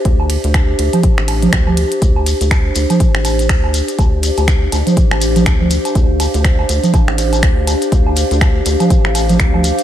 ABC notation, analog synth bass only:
X:1
M:4/4
L:1/16
Q:"Swing 16ths" 1/4=122
K:Dm
V:1 name="Analog synth bass" clef=bass
D,,2 z D,,2 z D,, z2 A,,,2 z D,,2 z2 | D,,2 z D,,2 z D,, z2 A,,,3 D,,2 z2 | D,,2 z D,,2 z D,, z2 A,,,3 D,,2 z2 | D,,2 z D,,2 z D,, z2 A,,,3 D,,2 z2 |
D,,2 z D,,2 z D,, z2 A,,,3 D,,2 z2 |]